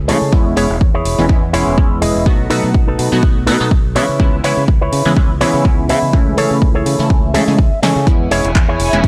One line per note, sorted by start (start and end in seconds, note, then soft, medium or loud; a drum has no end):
0.08 0.19 C#3 medium
0.08 0.16 E3 medium
0.08 0.16 G#3 medium
0.08 0.16 A3 medium
0.08 0.16 C#4 medium
0.08 0.17 E4 medium
0.08 0.32 G#4 medium
0.08 0.33 A4 medium
0.08 0.33 C#5 medium
0.08 open hi-hat loud
0.22 0.30 C#3 medium
0.32 0.52 E2 medium
0.32 0.54 E3 medium
0.32 0.54 G#3 medium
0.32 0.54 B3 medium
0.32 0.54 C#4 medium
0.32 0.55 E4 medium
0.32 kick loud
0.56 0.67 E1 medium
0.56 0.65 E3 medium
0.56 0.65 G#3 medium
0.56 0.65 B3 medium
0.56 0.65 C#4 medium
0.56 0.76 E4 loud
0.56 0.65 E4 medium
0.56 0.76 G#4 medium
0.56 0.76 C#5 loud
0.56 open hi-hat loud
0.70 0.79 E1 medium
0.81 1.01 E2 medium
0.81 kick loud
0.94 1.24 E4 medium
0.94 1.24 G#4 medium
0.94 1.24 C#5 medium
1.05 1.16 E1 medium
1.05 open hi-hat loud
1.18 1.27 E1 medium
1.18 1.25 E3 loud
1.18 1.25 G#3 medium
1.18 1.25 B3 medium
1.18 1.25 C#4 medium
1.18 1.25 E4 loud
1.29 1.55 E2 medium
1.29 1.42 E3 medium
1.29 1.42 G#3 medium
1.29 1.42 B3 medium
1.29 1.42 C#4 medium
1.29 1.42 E4 medium
1.29 kick loud
1.53 1.64 E1 medium
1.53 1.75 E3 medium
1.53 1.75 G#3 medium
1.53 1.75 B3 medium
1.53 1.75 C#4 medium
1.53 1.78 E4 loud
1.53 1.76 E4 medium
1.53 1.78 G#4 loud
1.53 1.78 C#5 loud
1.53 open hi-hat loud
1.67 1.76 E1 medium
1.78 2.04 E2 medium
1.78 2.24 E3 medium
1.78 2.24 G#3 medium
1.78 2.24 B3 medium
1.78 2.24 C#4 medium
1.78 2.24 E4 medium
1.78 kick loud
2.02 2.13 E1 medium
2.02 2.26 E4 medium
2.02 2.26 G#4 medium
2.02 2.26 D#5 medium
2.02 open hi-hat loud
2.16 2.24 E1 medium
2.26 2.46 B1 medium
2.26 2.48 F#3 medium
2.26 2.48 A3 medium
2.26 2.48 B3 medium
2.26 2.48 D#4 medium
2.26 2.48 F#4 loud
2.26 kick loud
2.50 2.61 B2 medium
2.50 3.09 F#3 medium
2.50 3.09 A3 medium
2.50 3.09 B3 medium
2.50 2.69 D#4 loud
2.50 3.09 D#4 medium
2.50 3.09 F#4 medium
2.50 2.69 A4 medium
2.50 2.69 B4 loud
2.50 open hi-hat medium
2.64 2.72 B2 medium
2.74 2.94 B1 medium
2.74 kick loud
2.87 3.17 D#4 medium
2.87 3.18 A4 medium
2.87 3.18 B4 medium
2.99 3.09 B2 medium
2.99 open hi-hat loud
3.12 3.21 B2 medium
3.12 3.45 F#3 medium
3.12 3.45 A3 medium
3.12 3.45 B3 medium
3.12 3.45 D#4 medium
3.12 3.45 F#4 medium
3.23 3.49 B1 medium
3.23 kick loud
3.46 3.58 B2 medium
3.46 3.55 F#3 medium
3.46 3.55 A3 medium
3.46 3.55 B3 medium
3.46 3.71 D#4 loud
3.46 3.55 D#4 medium
3.46 3.55 F#4 loud
3.46 3.71 A4 loud
3.46 3.71 B4 loud
3.46 open hi-hat medium
3.60 3.69 B2 medium
3.60 3.67 F#3 medium
3.60 3.67 A3 medium
3.60 3.67 B3 medium
3.60 3.67 D#4 medium
3.60 3.67 A4 medium
3.71 3.97 B1 medium
3.71 kick loud
3.95 4.06 C#3 medium
3.95 4.03 E3 medium
3.95 4.04 G#3 medium
3.95 4.04 B3 medium
3.95 4.04 C#4 medium
3.95 4.35 E4 medium
3.95 4.04 E4 medium
3.95 4.35 B4 medium
3.95 4.36 C#5 loud
3.95 open hi-hat loud
4.09 4.18 C#3 medium
4.19 4.40 C#2 medium
4.19 4.41 E3 medium
4.19 4.41 G#3 medium
4.19 4.41 B3 medium
4.19 4.42 C#4 medium
4.19 4.42 E4 medium
4.19 kick loud
4.44 4.55 C#3 medium
4.44 4.52 E3 medium
4.44 4.52 G#3 medium
4.44 4.52 B3 medium
4.44 4.52 C#4 medium
4.44 4.63 E4 loud
4.44 4.52 E4 medium
4.44 4.63 B4 loud
4.44 4.63 C#5 loud
4.44 open hi-hat medium
4.57 4.66 C#3 medium
4.68 4.88 C#2 medium
4.68 kick loud
4.81 5.11 E4 medium
4.81 5.11 B4 medium
4.81 5.11 C#5 medium
4.92 5.03 C#3 medium
4.92 open hi-hat loud
5.05 5.14 C#3 medium
5.05 5.12 E3 loud
5.05 5.12 G#3 medium
5.05 5.12 B3 medium
5.05 5.12 C#4 medium
5.05 5.12 E4 loud
5.16 5.42 C#2 medium
5.16 5.29 G#3 medium
5.16 5.29 B3 medium
5.16 5.29 C#4 medium
5.16 5.29 E4 medium
5.16 kick loud
5.41 5.51 C#3 medium
5.41 5.62 E3 medium
5.41 5.62 G#3 medium
5.41 5.63 B3 medium
5.41 5.63 C#4 medium
5.41 5.65 E4 loud
5.41 5.63 E4 medium
5.41 5.65 B4 loud
5.41 5.65 C#5 loud
5.41 open hi-hat loud
5.54 5.63 C#3 medium
5.65 5.91 C#2 medium
5.65 6.11 G#3 medium
5.65 6.11 B3 medium
5.65 6.11 C#4 medium
5.65 6.11 E4 medium
5.65 kick loud
5.89 6.00 C#3 medium
5.89 6.13 E4 medium
5.89 6.14 B4 medium
5.89 6.14 E5 medium
5.89 open hi-hat medium
6.02 6.11 C#3 medium
6.13 6.33 C#2 medium
6.13 6.35 E3 medium
6.13 6.35 G#3 medium
6.13 6.35 A3 medium
6.13 6.35 C#4 medium
6.13 6.35 E4 loud
6.13 kick loud
6.37 6.48 C#3 medium
6.37 6.96 E3 medium
6.37 6.96 A3 medium
6.37 6.96 C#4 medium
6.37 6.97 E4 medium
6.37 6.56 G#4 loud
6.37 6.56 A4 loud
6.37 6.57 C#5 loud
6.37 open hi-hat medium
6.51 6.60 C#3 medium
6.62 6.81 C#2 medium
6.62 kick loud
6.75 7.05 G#4 medium
6.75 7.05 A4 medium
6.75 7.05 C#5 medium
6.86 6.96 C#3 medium
6.86 open hi-hat loud
6.99 7.08 C#3 medium
6.99 7.32 E3 medium
6.99 7.32 A3 medium
6.99 7.32 C#4 medium
6.99 7.32 E4 medium
7.10 7.35 C#2 medium
7.10 kick loud
7.34 7.45 C#3 medium
7.34 7.42 E3 medium
7.34 7.42 G#3 medium
7.34 7.42 A3 medium
7.34 7.43 C#4 medium
7.34 7.43 E4 loud
7.34 7.58 G#4 loud
7.34 7.59 A4 loud
7.34 7.57 C#5 medium
7.34 7.58 E5 loud
7.34 open hi-hat loud
7.48 7.56 C#3 medium
7.48 7.54 E3 medium
7.48 7.54 G#3 medium
7.48 7.54 A3 medium
7.48 7.54 C#4 medium
7.48 7.55 G#4 medium
7.58 7.69 C#2 medium
7.58 7.81 E5 medium
7.58 kick loud
7.82 7.93 C#3 medium
7.82 7.91 E3 medium
7.82 7.91 G#3 medium
7.82 7.91 A3 medium
7.82 7.91 C#4 medium
7.82 7.91 E4 medium
7.82 8.07 G#4 medium
7.82 8.07 A4 medium
7.82 8.07 C#5 medium
7.82 8.05 G#5 medium
7.82 snare medium
7.82 open hi-hat loud
7.96 8.05 C#3 medium
8.07 8.27 E2 medium
8.07 8.29 E3 medium
8.07 8.29 G#3 medium
8.07 8.29 B3 medium
8.07 8.29 C#4 medium
8.07 9.08 E4 medium
8.07 8.29 E4 medium
8.07 9.08 C#5 medium
8.07 9.08 G#5 medium
8.07 kick loud
8.07 closed hi-hat medium
8.31 8.42 E1 medium
8.31 8.39 E3 medium
8.31 8.39 G#3 medium
8.31 8.39 B3 medium
8.31 8.39 C#4 medium
8.31 8.50 E4 loud
8.31 8.39 E4 medium
8.31 8.50 G#4 medium
8.31 8.50 C#5 loud
8.31 open hi-hat loud
8.44 8.53 E1 medium
8.44 closed hi-hat medium
8.55 8.75 E2 medium
8.55 kick loud
8.55 clap loud
8.55 closed hi-hat medium
8.69 8.98 E4 medium
8.69 8.98 G#4 medium
8.69 8.99 C#5 medium
8.80 8.90 E1 medium
8.80 open hi-hat loud
8.93 9.02 E1 medium
8.93 8.99 E3 loud
8.93 8.99 G#3 medium
8.93 8.99 B3 medium
8.93 9.00 C#4 medium
8.93 9.00 E4 loud
8.93 closed hi-hat medium
9.03 9.08 E2 medium
9.03 9.08 E3 medium
9.03 9.08 C#4 medium
9.03 9.08 E4 medium
9.03 kick loud
9.03 closed hi-hat medium